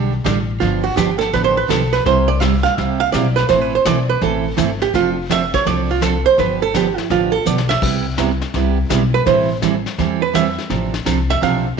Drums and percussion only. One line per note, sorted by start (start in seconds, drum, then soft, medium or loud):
0.25 kick soft
0.25 snare medium
0.25 hi-hat pedal medium
0.61 brush sweep medium
0.61 kick soft
0.61 snare soft
0.97 kick soft
0.97 snare medium
0.97 hi-hat pedal medium
1.21 snare soft
1.33 brush sweep soft
1.33 kick soft
1.33 snare soft
1.70 kick soft
1.70 snare medium
1.70 hi-hat pedal medium
1.94 snare soft
2.06 brush sweep soft
2.06 kick soft
2.06 snare soft
2.41 kick soft
2.41 snare medium
2.41 hi-hat pedal medium
2.65 snare soft
2.78 brush sweep soft
2.78 kick soft
2.78 snare soft
3.14 kick soft
3.14 snare medium
3.14 hi-hat pedal medium
3.37 snare soft
3.49 brush sweep soft
3.49 kick soft
3.49 snare soft
3.85 kick soft
3.85 snare medium
3.85 hi-hat pedal medium
4.21 brush sweep soft
4.21 kick soft
4.21 snare soft
4.58 kick soft
4.58 snare medium
4.58 hi-hat pedal medium
4.82 snare soft
4.94 brush sweep medium
4.94 kick soft
4.94 snare soft
5.30 kick soft
5.30 snare medium
5.30 hi-hat pedal medium
5.54 kick medium
5.54 snare soft
5.66 brush sweep soft
5.66 kick soft
5.66 snare soft
6.02 kick soft
6.02 snare medium
6.02 hi-hat pedal medium
6.38 brush sweep medium
6.38 kick soft
6.38 snare soft
6.74 kick soft
6.74 snare medium
6.74 hi-hat pedal medium
6.98 snare soft
7.10 brush sweep soft
7.10 kick soft
7.10 snare soft
7.46 hi-hat pedal medium
7.58 snare medium
7.70 snare medium
7.82 brush sweep soft
7.82 kick medium
7.82 snare soft
7.82 crash medium
8.18 kick soft
8.18 snare medium
8.18 hi-hat pedal medium
8.42 snare soft
8.54 brush sweep soft
8.54 kick soft
8.54 snare soft
8.90 kick soft
8.90 snare medium
8.90 hi-hat pedal medium
9.26 brush sweep soft
9.26 kick soft
9.26 snare soft
9.62 kick soft
9.62 snare medium
9.62 hi-hat pedal medium
9.86 snare soft
9.98 brush sweep soft
9.98 kick soft
9.98 snare soft
10.34 kick soft
10.34 snare medium
10.34 hi-hat pedal medium
10.58 snare soft
10.70 brush sweep soft
10.70 kick soft
10.70 snare soft
10.94 snare medium
11.06 kick soft
11.06 snare medium
11.06 hi-hat pedal medium
11.30 snare soft
11.42 brush sweep soft
11.42 kick soft
11.42 snare soft